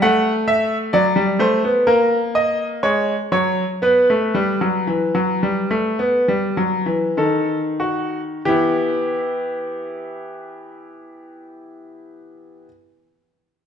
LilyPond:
<<
  \new Staff \with { instrumentName = "Grand piano" } { \time 4/4 \key e \minor \tempo 4 = 53 fis''8 e''8 d''8 c''8 ais'8 dis''8 cis''8 cis''8 | b'2. a'8 fis'8 | <b e' g'>1 | }
  \new Staff \with { instrumentName = "Grand piano" } { \clef bass \time 4/4 \key e \minor a4 fis16 g16 a16 b16 ais4 gis8 fis8 | b16 a16 g16 fis16 e16 fis16 g16 a16 b16 g16 fis16 e16 dis4 | e1 | }
>>